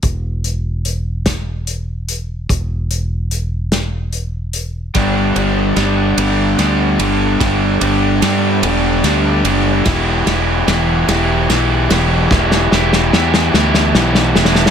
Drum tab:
RD |------------------------|------------------------|x---x---x---x---x---x---|x---x---x---x---x---x---|
HH |x---x---x---x---x---x---|x---x---x---x---x---x---|------------------------|------------------------|
SD |------------o-----------|------------o-----------|o-------o-------o-------|o-------o-------o-------|
BD |o-----------o-----------|o-----------------------|o-----------------------|o-----------------------|

RD |x---x---x---x---x---x---|------------------------|
HH |------------------------|------------------------|
SD |o---o---o---o---o---o---|o-o-o-o-o-o-o-o-o-o-oooo|
BD |o-----------------------|o-----------------------|